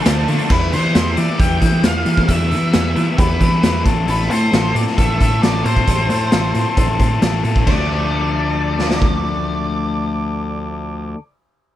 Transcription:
0.05 picked electric bass D2, overdriven electric guitar D3 F3 A3 D4 F4, snare, closed hi-hat
0.28 overdriven electric guitar D3 F3 A3 D4 F4, picked electric bass D3, closed hi-hat
0.39 closed hi-hat
0.50 picked electric bass E2, overdriven electric guitar G3 B3 E4, lead electric guitar B4, kick, crash
0.73 picked electric bass E3, overdriven electric guitar G3 B3 E4, lead electric guitar C5, closed hi-hat
0.94 picked electric bass E2, overdriven electric guitar G3 B3 E4, snare, closed hi-hat
1.16 picked electric bass E3, overdriven electric guitar G3 B3 E4, lead electric guitar D5, closed hi-hat
1.38 picked electric bass E2, overdriven electric guitar G3 B3 E4, lead electric guitar G5, kick, closed hi-hat
1.60 picked electric bass E3, overdriven electric guitar G3 B3 E4, kick, closed hi-hat
1.83 picked electric bass E2, overdriven electric guitar G3 B3 E4, lead electric guitar F5, snare, closed hi-hat
2.06 picked electric bass E3, overdriven electric guitar G3 B3 E4, closed hi-hat
2.17 kick
2.27 picked electric bass E2, overdriven electric guitar G3 B3 E4, lead electric guitar E5, kick, closed hi-hat
2.50 picked electric bass E3, overdriven electric guitar G3 B3 E4, closed hi-hat
2.73 picked electric bass E2, overdriven electric guitar G3 B3 E4, snare, closed hi-hat
2.95 picked electric bass E3, overdriven electric guitar G3 B3 E4, closed hi-hat
3.17 picked electric bass E2, overdriven electric guitar G3 B3 E4, lead electric guitar B4, kick, closed hi-hat
3.39 picked electric bass E3, overdriven electric guitar G3 B3 E4, kick, closed hi-hat
3.62 picked electric bass E2, overdriven electric guitar G3 B3 E4, snare, closed hi-hat
3.84 picked electric bass A1, overdriven electric guitar C4 E4 A4, kick, closed hi-hat
4.07 picked electric bass A1, overdriven electric guitar C4 E4 A4, lead electric guitar B4, closed hi-hat
4.28 picked electric bass A2, overdriven electric guitar C4 E4 A4, lead electric guitar C5, closed hi-hat
4.51 picked electric bass A1, overdriven electric guitar C4 E4 A4, snare, closed hi-hat
4.73 picked electric bass A2, overdriven electric guitar C4 E4 A4, lead electric guitar D5, closed hi-hat
4.87 snare
4.96 picked electric bass A1, overdriven electric guitar C4 E4 A4, lead electric guitar E5, kick, closed hi-hat
5.18 picked electric bass A2, overdriven electric guitar C4 E4 A4, lead electric guitar E5, kick, closed hi-hat
5.41 picked electric bass A1, overdriven electric guitar C4 E4 A4, lead electric guitar D5, snare, closed hi-hat
5.64 picked electric bass A2, overdriven electric guitar C4 E4 A4, lead electric guitar C5, closed hi-hat
5.76 kick
5.87 picked electric bass A1, overdriven electric guitar C4 E4 A4, kick, closed hi-hat
6.08 picked electric bass A2, overdriven electric guitar C4 E4 A4, closed hi-hat
6.31 picked electric bass A1, overdriven electric guitar C4 E4 A4, snare, closed hi-hat
6.54 picked electric bass A2, overdriven electric guitar C4 E4 A4, closed hi-hat
6.77 picked electric bass A1, overdriven electric guitar C4 E4 A4, kick, closed hi-hat
6.99 picked electric bass A2, overdriven electric guitar C4 E4 A4, kick, closed hi-hat
7.22 picked electric bass A1, overdriven electric guitar C4 E4 A4, snare, closed hi-hat
7.43 picked electric bass A2, overdriven electric guitar C4 E4 A4, closed hi-hat
7.56 kick
7.65 picked electric bass D2, overdriven electric guitar F3 A3 D4, lead electric guitar D5, kick, crash
8.79 snare
8.91 snare
9.02 kick

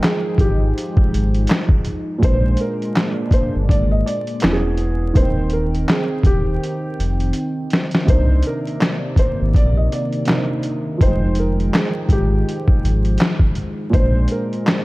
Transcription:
Already playing: felt piano F3 G#3 D#4 G5, analog synth pad F3 G#3 D#4 G5
0.03 felt piano G#4, snare, clap, closed hi-hat
0.38 sub bass G#1, felt piano G4, kick, closed hi-hat
0.78 closed hi-hat
0.97 kick
1.14 sub bass G#1, closed hi-hat
1.34 closed hi-hat
1.47 snare, clap, closed hi-hat
1.69 kick
1.85 closed hi-hat
2.18 felt piano A#2 G#3, analog synth pad G#3 A#3 D4
2.23 sub bass A#1, felt piano C5, kick, closed hi-hat
2.27 felt piano B4
2.34 felt piano C5
2.57 felt piano A#4, closed hi-hat
2.82 closed hi-hat
2.96 snare, clap, closed hi-hat
3.31 felt piano C5, kick, closed hi-hat
3.55 sub bass G1
3.69 sub bass G#1, felt piano D5, kick, closed hi-hat
3.91 felt piano D#5
4.06 felt piano D5, closed hi-hat
4.27 closed hi-hat
4.40 sub bass E1, felt piano E3 B3, snare, clap, closed hi-hat
4.45 felt piano C#4 F#4
4.53 felt piano G#4
4.77 closed hi-hat
5.14 sub bass D#1, felt piano D#3 A#3 C5, analog synth pad D#3 C4 G5, kick, closed hi-hat
5.20 felt piano C4 G5
5.50 felt piano A#4, closed hi-hat
5.75 closed hi-hat
5.89 felt piano G#4, snare, clap, closed hi-hat
6.23 sub bass D#1, felt piano G4, kick, closed hi-hat
6.64 closed hi-hat
6.99 sub bass F1, closed hi-hat
7.20 closed hi-hat
7.33 closed hi-hat
7.70 snare, closed hi-hat
7.91 snare, closed hi-hat
8.05 sub bass C2, felt piano C3 A#3, analog synth pad C3 D#3 A#3 D5, kick, closed hi-hat
8.10 felt piano D4 C5
8.15 felt piano D#4
8.43 closed hi-hat
8.47 felt piano A#4
8.67 closed hi-hat
8.81 snare, clap, closed hi-hat
9.16 felt piano C5, kick, closed hi-hat
9.41 sub bass G#1
9.54 sub bass A#1, felt piano D5, kick, closed hi-hat
9.77 felt piano D#5
9.92 felt piano D5, closed hi-hat
10.13 closed hi-hat
10.25 felt piano C3 A#3, snare, clap, closed hi-hat
10.29 felt piano D4 D#4
10.63 closed hi-hat
10.97 felt piano F3 D#4, analog synth pad F3 G#3 G5, kick, closed hi-hat
11.01 sub bass F1, felt piano C5 G5
11.07 felt piano G#3
11.35 closed hi-hat
11.39 felt piano A#4
11.60 closed hi-hat
11.74 felt piano G#4, snare, clap, closed hi-hat
12.09 sub bass G#1, felt piano G4, kick, closed hi-hat
12.49 closed hi-hat
12.68 kick
12.84 sub bass G#1, closed hi-hat
13.05 closed hi-hat
13.18 snare, clap, closed hi-hat
13.39 kick
13.55 closed hi-hat
13.90 sub bass A#1, felt piano A#2 G#3, analog synth pad G#3 A#3 D4, kick, closed hi-hat
13.94 felt piano D4 C5
13.99 felt piano C5
14.28 felt piano A#4, closed hi-hat
14.53 closed hi-hat
14.67 snare, clap, closed hi-hat

